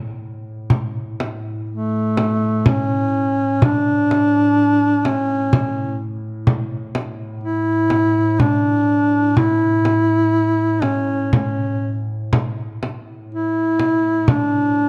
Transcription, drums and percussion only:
0.70 frame drum medium
1.20 frame drum soft
2.17 frame drum medium
2.66 frame drum medium
3.62 frame drum medium
4.11 frame drum soft
5.05 frame drum medium
5.53 frame drum medium
6.47 frame drum medium
6.95 frame drum medium
7.90 frame drum medium
8.40 frame drum medium
9.37 frame drum medium
9.85 frame drum soft
10.82 frame drum medium
11.33 frame drum medium
12.33 frame drum medium
12.83 frame drum soft
13.79 frame drum soft
14.28 frame drum medium

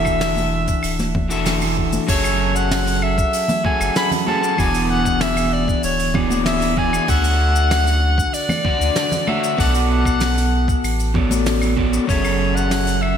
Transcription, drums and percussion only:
0.05 kick medium
0.05 open hi-hat soft
0.05 cabasa medium
0.05 claves medium
0.21 snare loud
0.21 open hi-hat medium
0.21 cabasa medium
0.37 open hi-hat medium
0.37 high conga medium
0.37 cabasa soft
0.67 kick loud
0.67 open hi-hat soft
0.67 cabasa medium
0.83 open hi-hat medium
0.83 cabasa medium
0.83 claves medium
0.99 snare soft
0.99 open hi-hat medium
0.99 high conga medium
0.99 cabasa soft
1.15 kick loud
1.15 low conga medium
1.30 open hi-hat soft
1.30 cabasa medium
1.45 snare medium
1.45 open hi-hat medium
1.45 high conga medium
1.45 cabasa medium
1.61 open hi-hat medium
1.61 cabasa soft
1.61 claves medium
1.77 kick medium
1.92 open hi-hat soft
1.92 high conga medium
1.92 cabasa medium
2.08 kick loud
2.08 open hi-hat medium
2.08 crash loud
2.08 cabasa medium
2.24 open hi-hat medium
2.24 cabasa medium
2.24 claves medium
2.56 cabasa medium
2.71 snare loud
2.71 open hi-hat medium
2.71 cabasa medium
2.87 open hi-hat medium
2.87 cabasa medium
3.02 claves medium
3.18 kick loud
3.18 cabasa medium
3.33 open hi-hat medium
3.33 cabasa medium
3.48 open hi-hat medium
3.48 high conga loud
3.48 low conga medium
3.48 cabasa medium
3.65 kick loud
3.80 open hi-hat soft
3.80 cabasa medium
3.80 claves medium
3.96 snare loud
3.96 open hi-hat medium
3.96 cabasa medium
4.11 open hi-hat medium
4.11 low conga medium
4.11 cabasa soft
4.28 high conga medium
4.44 cabasa medium
4.58 kick loud
4.58 open hi-hat medium
4.58 cabasa medium
4.58 claves medium
4.74 open hi-hat medium
4.74 cabasa soft
5.05 kick medium
5.05 cabasa medium
5.21 snare loud
5.21 open hi-hat medium
5.21 cabasa medium
5.37 open hi-hat medium
5.37 cabasa medium
5.37 claves medium
5.68 kick loud
5.68 cabasa medium
5.83 open hi-hat medium
5.83 cabasa medium
5.99 open hi-hat medium
5.99 cabasa soft
6.14 kick loud
6.14 low conga medium
6.14 claves medium
6.30 open hi-hat soft
6.30 high conga medium
6.30 cabasa medium
6.46 snare loud
6.46 open hi-hat medium
6.46 cabasa medium
6.62 open hi-hat medium
6.62 cabasa medium
6.77 kick medium
6.93 cabasa medium
6.93 claves medium
7.08 kick loud
7.08 open hi-hat medium
7.08 cabasa medium
7.24 open hi-hat medium
7.24 cabasa medium
7.56 cabasa medium
7.71 snare loud
7.71 open hi-hat medium
7.71 cabasa medium
7.71 claves medium
7.87 open hi-hat medium
7.87 cabasa medium
8.18 kick loud
8.18 cabasa medium
8.34 open hi-hat medium
8.34 cabasa medium
8.49 open hi-hat medium
8.49 high conga medium
8.49 low conga loud
8.49 cabasa soft
8.49 claves medium
8.65 kick loud
8.81 open hi-hat soft
8.81 cabasa medium
8.96 snare loud
8.96 open hi-hat medium
8.96 cabasa medium
9.12 open hi-hat medium
9.12 low conga medium
9.12 cabasa medium
9.27 high conga loud
9.27 claves medium
9.44 cabasa medium
9.59 kick loud
9.59 open hi-hat medium
9.59 cabasa medium
9.74 open hi-hat medium
9.74 cabasa medium
10.05 kick medium
10.05 cabasa medium
10.05 claves medium
10.20 snare loud
10.20 open hi-hat medium
10.20 cabasa medium
10.38 open hi-hat medium
10.38 cabasa soft
10.68 kick loud
10.68 cabasa medium
10.84 open hi-hat medium
10.84 cabasa medium
10.84 claves medium
10.99 open hi-hat medium
10.99 cabasa medium
11.15 kick loud
11.15 low conga medium
11.31 open hi-hat soft
11.31 high conga medium
11.31 cabasa medium
11.46 snare loud
11.46 open hi-hat medium
11.46 cabasa medium
11.62 open hi-hat medium
11.62 cabasa soft
11.62 claves medium
11.78 kick medium
11.94 cabasa medium
12.09 kick loud
12.09 open hi-hat medium
12.09 cabasa medium
12.24 open hi-hat medium
12.24 cabasa soft
12.24 claves medium
12.57 cabasa medium
12.71 snare medium
12.71 open hi-hat medium
12.71 cabasa medium
12.87 open hi-hat medium
12.87 cabasa soft
13.03 claves medium

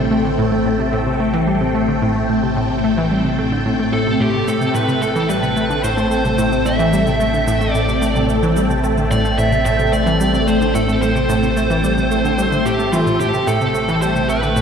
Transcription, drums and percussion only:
4.48 cabasa medium
4.61 cabasa soft
4.75 cabasa medium
4.89 cabasa soft
5.02 cabasa medium
5.16 cabasa soft
5.30 high conga soft
5.30 cabasa medium
5.43 cabasa soft
5.57 cabasa medium
5.70 cabasa soft
5.84 cabasa medium
5.98 cabasa soft
6.11 cabasa medium
6.25 high conga soft
6.25 cabasa soft
6.38 cabasa medium
6.52 cabasa soft
6.66 cabasa medium
6.79 cabasa soft
6.93 cabasa medium
7.07 cabasa soft
7.20 high conga soft
7.20 cabasa medium
7.34 cabasa soft
7.48 cabasa medium
7.61 cabasa soft
7.75 cabasa medium
7.89 cabasa soft
8.02 cabasa medium
8.16 high conga soft
8.16 cabasa soft
8.29 cabasa medium
8.43 cabasa soft
8.57 cabasa medium
8.70 cabasa soft
8.84 cabasa medium
8.98 cabasa soft
9.11 high conga soft
9.11 cabasa medium
9.25 cabasa soft
9.39 cabasa medium
9.52 cabasa soft
9.66 cabasa medium
9.79 cabasa soft
9.93 cabasa medium
10.07 high conga soft
10.07 cabasa soft
10.21 cabasa medium
10.34 cabasa soft
10.48 cabasa medium
10.61 cabasa soft
10.75 cabasa medium
10.89 cabasa soft
11.02 high conga soft
11.02 cabasa medium
11.16 cabasa soft
11.30 cabasa medium
11.43 cabasa soft
11.57 cabasa medium
11.70 cabasa soft
11.84 cabasa medium
11.98 high conga soft
11.98 cabasa soft
12.11 cabasa medium
12.25 cabasa soft
12.39 cabasa medium
12.52 cabasa soft
12.66 cabasa medium
12.79 cabasa soft
12.93 high conga soft
12.93 cabasa medium
13.07 cabasa soft
13.20 cabasa medium
13.34 cabasa soft
13.48 cabasa medium
13.61 cabasa soft
13.75 cabasa medium
13.88 cabasa soft
14.02 high conga soft
14.02 cabasa medium
14.16 cabasa soft
14.29 cabasa medium
14.43 cabasa soft
14.56 cabasa medium

